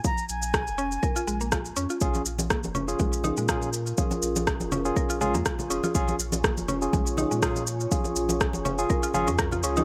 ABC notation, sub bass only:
X:1
M:4/4
L:1/16
Q:"Swing 16ths" 1/4=122
K:Bbm
V:1 name="Sub bass" clef=bass
z2 B,,,3 F,,,3 z2 B,,,4 F,, z | B,,, z B,,,3 F,,,3 B,,,3 B,,4- B,, | z2 B,,,3 F,,,3 z B,,,2 F,, z2 F,,, z | B,,, z B,,,3 F,,,3 B,,,3 B,,4- B,, |
z2 B,,,3 F,,,3 z2 A,,, F,,3 D,, z |]